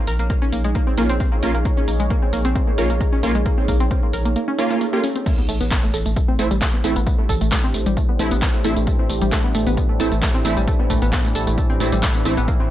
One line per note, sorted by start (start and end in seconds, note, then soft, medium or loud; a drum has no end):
0.00 5.26 D#4 medium
0.00 5.26 G#4 medium
0.00 5.26 C#5 medium
0.07 0.19 A#1 loud
0.07 0.10 A#4 loud
0.07 open hi-hat loud
0.19 0.30 A#1 medium
0.19 0.24 A#3 medium
0.19 closed hi-hat medium
0.30 0.33 A#3 medium
0.30 kick loud
0.30 closed hi-hat medium
0.42 0.45 C#4 loud
0.52 0.64 A#1 loud
0.52 0.55 A#3 medium
0.52 open hi-hat loud
0.64 0.75 A#1 medium
0.64 0.67 G#3 loud
0.64 closed hi-hat medium
0.75 0.78 A#3 loud
0.75 kick loud
0.75 closed hi-hat medium
0.87 0.94 C4 medium
0.98 1.09 A#1 loud
0.98 1.06 A#3 medium
0.98 1.05 A#3 loud
0.98 1.06 C#4 medium
0.98 1.06 F4 medium
0.98 open hi-hat loud
1.10 1.20 A#1 medium
1.10 1.12 C4 loud
1.10 closed hi-hat medium
1.20 1.28 C4 medium
1.20 kick loud
1.20 open hi-hat medium
1.32 1.35 A#3 medium
1.43 1.54 A#1 loud
1.43 1.51 A#3 medium
1.43 1.51 C#4 medium
1.43 1.51 F4 loud
1.43 1.46 A#4 loud
1.43 open hi-hat loud
1.55 1.65 A#1 medium
1.55 1.59 A#3 medium
1.55 closed hi-hat medium
1.65 1.68 A#3 medium
1.65 kick loud
1.65 closed hi-hat medium
1.77 1.80 C#4 medium
1.88 1.99 A#1 loud
1.88 1.91 A#3 medium
1.88 open hi-hat loud
2.00 2.10 A#1 medium
2.00 2.02 G#3 loud
2.00 closed hi-hat medium
2.10 2.13 A#3 loud
2.10 kick loud
2.10 closed hi-hat medium
2.22 2.29 C4 medium
2.33 2.44 A#1 loud
2.33 2.40 A#3 loud
2.33 open hi-hat loud
2.45 2.55 A#1 medium
2.45 2.48 C4 loud
2.45 closed hi-hat medium
2.55 2.63 C4 medium
2.55 kick loud
2.55 closed hi-hat medium
2.67 2.70 A#3 medium
2.78 2.89 A#1 loud
2.78 2.87 A#3 medium
2.78 2.87 C#4 medium
2.78 2.87 F4 loud
2.78 2.81 A#4 loud
2.78 open hi-hat loud
2.90 3.00 A#1 medium
2.90 2.94 A#3 medium
2.90 closed hi-hat medium
3.01 3.04 A#3 medium
3.01 kick loud
3.01 closed hi-hat medium
3.13 3.15 C#4 loud
3.23 3.34 A#1 loud
3.23 3.26 A#3 medium
3.23 3.32 A#3 medium
3.23 3.32 C#4 medium
3.23 3.32 F4 loud
3.23 open hi-hat loud
3.35 3.46 A#1 medium
3.35 3.38 G#3 loud
3.35 closed hi-hat medium
3.46 3.49 A#3 loud
3.46 kick loud
3.46 closed hi-hat medium
3.58 3.64 C4 medium
3.68 3.80 A#1 loud
3.68 3.76 A#3 loud
3.68 kick medium
3.68 open hi-hat loud
3.80 3.91 A#1 medium
3.80 3.83 C4 loud
3.80 closed hi-hat medium
3.91 3.98 C4 medium
3.91 kick loud
3.91 closed hi-hat medium
4.03 4.05 A#3 medium
4.13 4.25 A#1 loud
4.13 4.16 A#4 loud
4.13 open hi-hat loud
4.25 4.36 A#1 medium
4.25 4.30 A#3 medium
4.25 closed hi-hat medium
4.36 4.39 A#3 medium
4.36 closed hi-hat medium
4.36 swell medium
4.48 4.51 C#4 loud
4.59 4.69 A#3 loud
4.59 4.69 C#4 loud
4.59 4.63 C#4 medium
4.59 4.69 F4 loud
4.59 open hi-hat loud
4.70 4.77 A#3 medium
4.70 4.83 A#3 medium
4.70 4.83 C#4 medium
4.70 4.83 F4 medium
4.70 closed hi-hat medium
4.81 4.86 A#3 medium
4.81 open hi-hat medium
4.93 5.01 A#3 medium
4.93 5.01 C#4 medium
4.93 5.01 F4 loud
4.93 4.97 G4 medium
5.04 5.09 C#4 loud
5.04 open hi-hat loud
5.16 5.18 C4 medium
5.16 closed hi-hat medium
5.26 12.71 A2 medium
5.26 12.71 E3 medium
5.26 5.29 A3 loud
5.26 12.48 D4 medium
5.26 kick loud
5.26 closed hi-hat medium
5.26 tambourine soft
5.26 crash loud
5.26 sub drop medium
5.38 5.45 B3 medium
5.49 5.60 A1 loud
5.49 5.56 A3 loud
5.49 open hi-hat loud
5.49 tambourine medium
5.60 5.71 A1 medium
5.60 5.63 B3 loud
5.60 12.48 G4 medium
5.60 closed hi-hat medium
5.60 tambourine soft
5.71 5.79 B3 medium
5.71 kick loud
5.71 clap loud
5.71 closed hi-hat medium
5.71 tambourine soft
5.83 5.86 A3 medium
5.94 6.05 A1 loud
5.94 5.97 A4 loud
5.94 open hi-hat loud
5.94 tambourine medium
5.99 12.48 C5 medium
6.06 6.16 A1 medium
6.06 6.10 A3 medium
6.06 closed hi-hat medium
6.06 tambourine soft
6.16 6.19 A3 medium
6.16 kick loud
6.16 closed hi-hat medium
6.16 tambourine soft
6.28 6.31 C4 loud
6.39 6.50 A1 loud
6.39 6.42 A3 medium
6.39 6.48 A3 medium
6.39 6.48 C4 medium
6.39 6.48 E4 loud
6.39 open hi-hat loud
6.39 tambourine medium
6.51 6.61 A1 medium
6.51 6.54 G3 loud
6.51 closed hi-hat medium
6.51 tambourine soft
6.62 6.64 A3 loud
6.62 kick loud
6.62 clap loud
6.62 closed hi-hat medium
6.62 tambourine soft
6.74 6.80 B3 medium
6.84 6.95 A1 loud
6.84 6.93 A3 loud
6.84 6.91 A3 medium
6.84 6.93 C4 medium
6.84 6.93 E4 loud
6.84 open hi-hat loud
6.84 tambourine medium
6.96 7.06 A1 medium
6.96 6.99 B3 loud
6.96 closed hi-hat medium
6.96 tambourine soft
7.07 7.14 B3 medium
7.07 kick loud
7.07 closed hi-hat medium
7.07 tambourine soft
7.19 7.21 A3 medium
7.29 7.41 A1 loud
7.29 7.32 A4 loud
7.29 kick medium
7.29 open hi-hat loud
7.29 tambourine medium
7.41 7.52 A1 medium
7.41 7.46 A3 medium
7.41 closed hi-hat medium
7.41 tambourine soft
7.52 7.55 A3 medium
7.52 kick loud
7.52 clap loud
7.52 closed hi-hat medium
7.52 tambourine soft
7.64 7.66 C4 loud
7.74 7.86 A1 loud
7.74 7.77 A3 medium
7.74 open hi-hat loud
7.74 tambourine medium
7.86 7.97 A1 medium
7.86 7.89 G3 loud
7.86 closed hi-hat medium
7.86 tambourine soft
7.97 8.00 A3 loud
7.97 kick loud
7.97 closed hi-hat medium
7.97 tambourine soft
8.09 8.15 B3 medium
8.19 8.31 A1 loud
8.19 8.28 A3 medium
8.19 8.27 A3 loud
8.19 8.28 C4 medium
8.19 8.28 E4 loud
8.19 open hi-hat loud
8.19 tambourine medium
8.31 8.42 A1 medium
8.31 8.34 B3 loud
8.31 closed hi-hat medium
8.31 tambourine soft
8.42 8.49 B3 medium
8.42 kick loud
8.42 clap loud
8.42 closed hi-hat medium
8.42 tambourine soft
8.54 8.57 A3 medium
8.64 8.76 A1 loud
8.64 8.73 A3 medium
8.64 8.73 C4 medium
8.64 8.73 E4 loud
8.64 8.67 A4 loud
8.64 open hi-hat loud
8.64 tambourine medium
8.76 8.87 A1 medium
8.76 8.81 A3 medium
8.76 closed hi-hat medium
8.76 tambourine soft
8.87 8.90 A3 medium
8.87 kick loud
8.87 closed hi-hat medium
8.87 tambourine soft
8.99 9.02 C4 loud
9.10 9.21 A1 loud
9.10 9.13 A3 medium
9.10 open hi-hat loud
9.10 tambourine medium
9.22 9.32 A1 medium
9.22 9.24 G3 loud
9.22 closed hi-hat medium
9.22 tambourine soft
9.32 9.35 A3 loud
9.32 kick loud
9.32 clap loud
9.32 closed hi-hat medium
9.32 tambourine soft
9.44 9.51 B3 medium
9.55 9.66 A1 loud
9.55 9.62 A3 loud
9.55 open hi-hat loud
9.55 tambourine medium
9.67 9.77 A1 medium
9.67 9.69 B3 loud
9.67 closed hi-hat medium
9.67 tambourine soft
9.77 9.85 B3 medium
9.77 kick loud
9.77 closed hi-hat medium
9.77 tambourine soft
9.89 9.92 A3 medium
10.00 10.11 A1 loud
10.00 10.09 A3 medium
10.00 10.09 C4 medium
10.00 10.09 E4 loud
10.00 10.03 A4 loud
10.00 open hi-hat loud
10.00 tambourine medium
10.12 10.22 A1 medium
10.12 10.16 A3 medium
10.12 closed hi-hat medium
10.12 tambourine soft
10.22 10.25 A3 medium
10.22 kick loud
10.22 clap loud
10.22 closed hi-hat medium
10.22 tambourine soft
10.34 10.37 C4 loud
10.45 10.56 A1 loud
10.45 10.54 A3 medium
10.45 10.48 A3 medium
10.45 10.54 C4 medium
10.45 10.54 E4 loud
10.45 open hi-hat loud
10.45 tambourine medium
10.57 10.67 A1 medium
10.57 10.60 G3 loud
10.57 closed hi-hat medium
10.57 tambourine soft
10.67 10.71 A3 loud
10.67 kick loud
10.67 closed hi-hat medium
10.67 tambourine soft
10.79 10.86 B3 medium
10.90 11.01 A1 loud
10.90 10.97 A3 loud
10.90 kick medium
10.90 open hi-hat loud
10.90 tambourine medium
11.02 11.12 A1 medium
11.02 11.05 B3 loud
11.02 closed hi-hat medium
11.02 tambourine soft
11.13 11.20 B3 medium
11.13 kick loud
11.13 clap loud
11.13 closed hi-hat medium
11.13 tambourine soft
11.25 11.27 A3 medium
11.25 tambourine soft
11.35 11.47 A1 loud
11.35 11.38 A4 loud
11.35 open hi-hat loud
11.35 tambourine medium
11.47 11.58 A1 medium
11.47 11.52 A3 medium
11.47 closed hi-hat medium
11.47 tambourine soft
11.58 11.61 A3 medium
11.58 kick loud
11.58 closed hi-hat medium
11.58 tambourine soft
11.70 11.72 C4 loud
11.80 11.92 A1 loud
11.80 11.89 A3 medium
11.80 11.83 A3 medium
11.80 11.89 C4 medium
11.80 11.89 E4 loud
11.80 open hi-hat loud
11.80 tambourine medium
11.92 12.03 A1 medium
11.92 11.95 G3 loud
11.92 closed hi-hat medium
11.92 tambourine soft
12.03 12.06 A3 loud
12.03 kick loud
12.03 clap loud
12.03 open hi-hat medium
12.03 tambourine soft
12.15 12.21 B3 medium
12.15 tambourine soft
12.25 12.37 A1 loud
12.25 12.34 A3 medium
12.25 12.33 A3 medium
12.25 12.34 C4 medium
12.25 12.34 E4 loud
12.25 open hi-hat loud
12.25 tambourine medium
12.37 12.48 A1 medium
12.37 12.40 B3 loud
12.37 closed hi-hat medium
12.37 tambourine soft
12.48 12.51 A#3 loud
12.48 12.71 D#4 medium
12.48 kick loud
12.48 closed hi-hat medium
12.48 tambourine soft
12.60 12.66 C4 medium